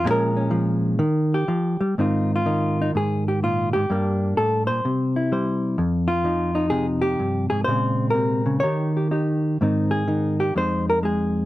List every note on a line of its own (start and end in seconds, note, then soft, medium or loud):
0.04 1.00 A#2 medium
0.04 0.50 F3 medium
0.04 1.01 G#3 medium
0.04 0.35 C#4 medium
0.11 0.87 A#4 medium
0.37 0.98 C#4 medium
0.51 0.98 F3 medium
0.99 1.48 D#3 medium
1.34 1.97 G4 medium
1.48 1.80 F3 medium
1.81 1.98 G3 medium
1.98 2.94 G#2 medium
1.98 2.45 D#3 soft
1.98 3.89 C4 soft
1.98 2.45 D#4 soft
1.98 2.32 F4 soft
2.36 2.96 F4 medium
2.46 3.90 D#3 medium
2.46 2.79 D#4 soft
2.82 2.90 D#4 medium
2.95 3.74 G#2 medium
2.95 3.28 G#4 medium
3.28 3.43 G4 medium
3.43 3.75 A#2 soft
3.43 3.73 F4 medium
3.73 3.89 G#2 medium
3.73 4.37 G4 medium
3.90 4.37 G2 medium
3.90 5.32 G3 soft
3.90 4.83 A#3 soft
3.90 4.83 D4 soft
4.37 4.69 A2 medium
4.37 4.67 A4 medium
4.67 4.84 A#2 medium
4.67 5.30 C5 medium
4.85 5.76 C3 medium
5.16 5.76 E4 medium
5.32 5.76 G3 medium
5.32 6.07 C5 medium
5.78 7.19 F2 medium
6.08 6.70 F4 medium
6.24 7.64 F3 medium
6.24 6.55 D#4 soft
6.55 7.18 D#4 medium
6.70 7.64 C3 medium
6.70 6.86 G#4 loud
7.02 7.49 G4 medium
7.19 7.50 G2 medium
7.50 7.66 G#2 medium
7.50 7.64 G#4 medium
7.64 8.60 A#2 medium
7.64 8.14 C#3 medium
7.64 8.10 C5 loud
7.69 8.62 G#3 soft
7.69 8.63 C4 soft
8.10 8.45 C3 medium
8.10 8.59 A#4 medium
8.46 8.61 C#3 medium
8.60 9.59 D#3 medium
8.60 9.10 D#4 soft
8.60 8.95 G4 soft
8.60 9.58 C#5 medium
8.97 9.10 G4 soft
9.11 9.57 D#4 soft
9.11 9.57 G4 soft
9.61 10.54 G#2 medium
9.61 10.06 D#3 soft
9.61 10.57 C4 soft
9.61 10.07 D#4 soft
9.91 10.39 G#4 medium
10.08 10.55 D#3 medium
10.08 10.54 D#4 soft
10.40 10.55 G4 medium
10.56 11.46 F2 medium
10.56 11.02 G#3 soft
10.56 11.46 C4 soft
10.56 11.46 D#4 soft
10.56 10.88 C5 medium
10.90 10.98 A#4 medium
11.03 11.46 G#3 medium
11.03 11.46 G#4 medium